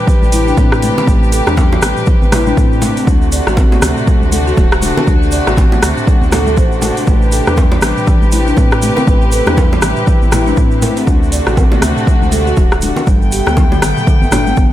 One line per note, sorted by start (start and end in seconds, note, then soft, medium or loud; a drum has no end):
0.00 11.03 C3 medium
0.00 3.03 D4 medium
0.00 3.03 G4 medium
0.00 3.03 B4 medium
0.07 0.21 E3 medium
0.07 kick loud
0.07 shaker medium
0.22 0.53 A1 medium
0.22 high conga medium
0.22 shaker soft
0.32 0.40 E4 loud
0.32 open hi-hat medium
0.32 high conga loud
0.32 shaker medium
0.47 0.57 D4 loud
0.47 shaker soft
0.57 0.91 A2 medium
0.57 0.71 C4 loud
0.57 kick loud
0.57 low bongo medium
0.57 high conga medium
0.57 shaker medium
0.72 cross-stick medium
0.72 shaker soft
0.82 0.96 A3 medium
0.82 open hi-hat loud
0.82 high conga loud
0.82 shaker medium
0.97 1.06 C4 medium
0.97 high bongo loud
0.97 low conga loud
0.97 shaker soft
1.07 1.41 A1 loud
1.07 1.21 A3 medium
1.07 kick loud
1.07 high conga medium
1.07 shaker medium
1.23 shaker soft
1.32 1.46 A4 medium
1.32 open hi-hat medium
1.32 shaker loud
1.47 1.78 E2 medium
1.47 1.57 D4 loud
1.47 cross-stick medium
1.47 low bongo medium
1.47 high conga medium
1.47 shaker soft
1.57 1.71 G3 medium
1.57 kick loud
1.57 high bongo loud
1.57 low conga loud
1.57 shaker medium
1.72 1.81 E3 medium
1.72 low bongo loud
1.72 shaker soft
1.82 1.93 A1 medium
1.82 cross-stick loud
1.82 open hi-hat loud
1.82 low conga medium
1.82 shaker loud
1.97 mid tom medium
1.97 shaker soft
2.06 2.21 E3 medium
2.06 kick loud
2.06 shaker medium
2.22 2.53 A1 medium
2.22 low conga loud
2.22 shaker soft
2.32 2.40 E4 loud
2.32 cross-stick loud
2.32 mid tom loud
2.32 open hi-hat loud
2.32 low bongo loud
2.32 high conga loud
2.32 shaker loud
2.46 2.57 D4 loud
2.46 high conga loud
2.46 shaker soft
2.57 2.91 A2 medium
2.57 2.71 C4 loud
2.57 kick loud
2.57 shaker medium
2.72 shaker soft
2.82 2.96 A3 medium
2.82 mid tom medium
2.82 open hi-hat loud
2.82 high bongo medium
2.82 high conga loud
2.82 shaker medium
2.97 3.06 C4 medium
2.97 open hi-hat medium
2.97 shaker soft
3.07 3.41 D2 loud
3.07 7.03 A3 medium
3.07 9.03 D4 medium
3.07 3.21 D4 medium
3.07 7.03 F#4 medium
3.07 kick loud
3.07 high conga medium
3.07 shaker medium
3.22 shaker soft
3.32 3.46 D5 medium
3.32 open hi-hat medium
3.32 shaker loud
3.47 3.78 A1 medium
3.47 3.57 F#4 loud
3.47 cross-stick medium
3.47 high conga medium
3.47 shaker soft
3.57 3.71 C4 medium
3.57 kick loud
3.57 high bongo loud
3.57 low conga loud
3.57 shaker medium
3.72 3.81 A3 medium
3.72 low bongo medium
3.72 shaker soft
3.82 3.93 D2 medium
3.82 cross-stick loud
3.82 open hi-hat loud
3.82 low conga loud
3.82 shaker loud
3.97 mid tom medium
3.97 shaker soft
4.07 4.21 A3 medium
4.07 kick loud
4.07 shaker medium
4.22 4.53 D2 medium
4.22 high conga loud
4.22 shaker soft
4.32 4.40 A4 loud
4.32 open hi-hat loud
4.32 high conga loud
4.32 shaker loud
4.47 4.56 F#4 loud
4.47 shaker soft
4.57 4.91 D1 medium
4.57 4.71 F#4 loud
4.57 kick loud
4.57 low bongo medium
4.57 high conga medium
4.57 shaker medium
4.72 cross-stick loud
4.72 shaker soft
4.82 4.96 D4 medium
4.82 open hi-hat loud
4.82 high conga loud
4.82 shaker loud
4.97 5.06 F#4 medium
4.97 high bongo loud
4.97 low conga loud
4.97 shaker soft
5.07 5.41 D2 loud
5.07 5.21 D4 medium
5.07 kick loud
5.07 high conga medium
5.07 shaker soft
5.22 shaker soft
5.32 5.46 D5 medium
5.32 open hi-hat medium
5.32 shaker loud
5.47 5.78 A1 medium
5.47 5.57 F#4 loud
5.47 cross-stick medium
5.47 low bongo medium
5.47 high conga medium
5.47 shaker soft
5.57 5.71 C4 medium
5.57 kick loud
5.57 high bongo loud
5.57 low conga loud
5.57 shaker medium
5.72 5.81 A3 medium
5.72 low bongo medium
5.72 shaker soft
5.82 5.93 D2 loud
5.82 cross-stick loud
5.82 open hi-hat medium
5.82 low conga loud
5.82 shaker loud
5.97 mid tom medium
5.97 shaker soft
6.07 6.21 A3 medium
6.07 kick loud
6.07 shaker medium
6.22 6.59 D2 medium
6.22 low conga loud
6.22 shaker soft
6.32 6.46 A4 loud
6.32 cross-stick medium
6.32 mid tom medium
6.32 open hi-hat medium
6.32 low bongo loud
6.32 high conga medium
6.32 shaker medium
6.47 6.53 A4 medium
6.47 high conga medium
6.47 shaker soft
6.57 6.91 A1 medium
6.57 6.65 C5 loud
6.57 kick loud
6.57 shaker medium
6.72 shaker soft
6.82 6.96 F#4 medium
6.82 mid tom medium
6.82 open hi-hat medium
6.82 high bongo medium
6.82 high conga medium
6.82 shaker loud
6.97 7.06 D4 medium
6.97 open hi-hat medium
6.97 shaker soft
7.07 7.41 A1 loud
7.07 7.22 A3 medium
7.07 11.03 G4 medium
7.07 11.03 B4 medium
7.07 kick loud
7.07 high conga medium
7.07 shaker medium
7.22 shaker soft
7.32 7.47 A4 medium
7.32 open hi-hat medium
7.32 shaker loud
7.47 7.78 E2 medium
7.47 7.57 D4 loud
7.47 cross-stick medium
7.47 high conga medium
7.47 shaker soft
7.57 7.72 G3 medium
7.57 kick loud
7.57 high bongo loud
7.57 low conga loud
7.57 shaker medium
7.72 7.82 E3 medium
7.72 low bongo loud
7.72 shaker soft
7.82 7.93 A1 medium
7.82 cross-stick loud
7.82 open hi-hat medium
7.82 low conga medium
7.82 shaker medium
7.97 mid tom medium
7.97 shaker soft
8.07 8.22 E3 medium
8.07 kick loud
8.07 shaker soft
8.22 8.53 A1 medium
8.22 high conga medium
8.22 shaker soft
8.32 8.40 E4 loud
8.32 open hi-hat medium
8.32 high conga loud
8.32 shaker medium
8.47 8.57 D4 loud
8.47 shaker soft
8.57 8.91 A2 medium
8.57 8.71 C4 loud
8.57 kick loud
8.57 low bongo medium
8.57 high conga medium
8.57 shaker medium
8.71 cross-stick medium
8.71 shaker soft
8.82 8.96 A3 medium
8.82 open hi-hat medium
8.82 high conga loud
8.82 shaker medium
8.97 9.06 C4 medium
8.97 high bongo medium
8.97 low conga medium
8.97 shaker soft
9.07 9.41 A1 loud
9.07 9.21 A3 medium
9.07 11.05 E4 medium
9.07 kick loud
9.07 high conga medium
9.07 shaker soft
9.22 shaker soft
9.32 9.46 A4 medium
9.32 open hi-hat medium
9.32 shaker loud
9.46 9.78 E2 medium
9.46 9.57 D4 loud
9.46 cross-stick medium
9.46 low bongo medium
9.46 high conga medium
9.46 shaker soft
9.57 9.71 G3 medium
9.57 kick loud
9.57 high bongo loud
9.57 low conga medium
9.57 shaker medium
9.72 9.81 E3 medium
9.72 low bongo medium
9.72 shaker soft
9.82 9.93 A1 loud
9.82 cross-stick loud
9.82 open hi-hat medium
9.82 low conga medium
9.82 shaker medium
9.96 mid tom medium
9.96 shaker soft
10.07 10.21 E3 medium
10.07 kick loud
10.07 shaker medium
10.22 10.53 A1 medium
10.22 low conga medium
10.22 shaker soft
10.32 10.40 E4 loud
10.32 cross-stick medium
10.32 mid tom loud
10.32 open hi-hat medium
10.32 low bongo medium
10.32 high conga medium
10.32 shaker medium
10.47 10.57 D4 loud
10.47 high conga medium
10.47 shaker soft
10.57 10.91 A2 medium
10.57 10.71 C4 loud
10.57 kick loud
10.57 shaker medium
10.71 shaker soft
10.82 10.95 A3 medium
10.82 mid tom medium
10.82 open hi-hat medium
10.82 high bongo medium
10.82 high conga medium
10.82 shaker medium
10.97 11.06 C4 medium
10.97 open hi-hat soft
10.97 shaker soft
11.07 11.41 D2 loud
11.07 13.05 C3 medium
11.07 13.05 A3 medium
11.07 11.21 D4 medium
11.07 13.05 D4 medium
11.07 13.05 F#4 medium
11.07 kick loud
11.07 high conga medium
11.07 shaker medium
11.23 shaker soft
11.32 11.46 D5 medium
11.32 open hi-hat medium
11.32 shaker medium
11.47 11.78 A1 medium
11.47 11.57 F#4 loud
11.47 cross-stick medium
11.47 high conga medium
11.47 shaker soft
11.57 11.71 C4 medium
11.57 kick loud
11.57 high bongo loud
11.57 low conga loud
11.57 shaker medium
11.72 11.81 A3 medium
11.72 low bongo loud
11.72 shaker soft
11.81 11.93 D2 medium
11.81 cross-stick medium
11.81 open hi-hat medium
11.81 low conga loud
11.81 shaker loud
11.97 mid tom medium
11.97 shaker soft
12.07 12.21 A3 medium
12.07 kick loud
12.07 shaker soft
12.22 12.53 D2 medium
12.22 high conga loud
12.22 shaker soft
12.32 12.40 A4 loud
12.32 open hi-hat medium
12.32 high conga medium
12.32 shaker medium
12.47 12.56 F#4 loud
12.47 shaker soft
12.57 12.91 D1 medium
12.57 12.71 F#4 loud
12.57 kick loud
12.57 low bongo medium
12.57 high conga medium
12.57 shaker soft
12.72 cross-stick medium
12.72 shaker soft
12.82 12.96 D4 medium
12.82 open hi-hat medium
12.82 high conga loud
12.82 shaker medium
12.96 13.06 F#4 medium
12.96 high bongo medium
12.96 low conga loud
12.96 shaker soft
13.07 13.41 G1 loud
13.07 13.21 G3 medium
13.07 14.73 A3 medium
13.07 14.73 B3 medium
13.07 14.73 G5 loud
13.07 kick loud
13.07 high conga medium
13.07 shaker medium
13.22 shaker soft
13.32 13.46 G4 medium
13.32 open hi-hat medium
13.32 shaker medium
13.46 13.78 D2 medium
13.46 13.57 B3 loud
13.46 cross-stick medium
13.46 low bongo medium
13.46 high conga medium
13.46 shaker soft
13.57 13.71 F#3 medium
13.57 kick loud
13.57 high bongo loud
13.57 low conga loud
13.57 shaker medium
13.72 13.81 D3 medium
13.72 low bongo medium
13.72 shaker soft
13.82 13.93 G1 medium
13.82 cross-stick loud
13.82 open hi-hat medium
13.82 low conga loud
13.82 shaker medium
13.97 mid tom medium
13.97 shaker soft
14.07 14.21 D3 medium
14.07 kick loud
14.07 shaker medium
14.22 14.53 G1 medium
14.22 low conga loud
14.22 shaker soft
14.32 14.40 D4 loud
14.32 cross-stick medium
14.32 mid tom loud
14.32 open hi-hat medium
14.32 low bongo medium
14.32 high conga loud
14.32 low conga medium
14.32 shaker medium
14.47 14.56 B3 loud
14.47 high conga medium
14.47 shaker soft
14.57 14.73 G1 loud
14.57 14.71 B3 loud
14.57 kick loud
14.57 shaker medium